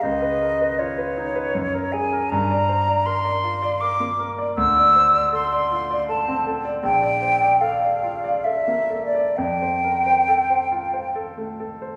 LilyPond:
<<
  \new Staff \with { instrumentName = "Flute" } { \time 3/4 \key g \dorian \tempo 4 = 79 dis''4 cis''4. gis''8 | bes''4 c'''4 d'''8 r8 | e'''4 c'''4 a''8 r8 | g''4 f''4 \tuplet 3/2 { e''4 d''8 } |
g''2 r4 | }
  \new Staff \with { instrumentName = "Grand piano" } { \time 3/4 \key g \dorian cis,16 b'16 bes'16 b'16 eis'16 b'16 dis'16 b'16 fis,16 ais'16 gis'16 ais'16 | g,16 d''16 c''16 d''16 bes'16 d''16 f'16 d''16 bes'16 bes16 bes'16 d''16 | d,16 d''16 c''16 d''16 a'16 d''16 f'16 d''16 a'16 c'16 a'16 d''16 | bes,,16 d''16 c''16 d''16 a'16 d''16 f'16 d''16 a'16 bes16 a'16 d''16 |
f,16 c''16 bes'16 c''16 a'16 c''16 f'16 c''16 a'16 a16 a'16 c''16 | }
>>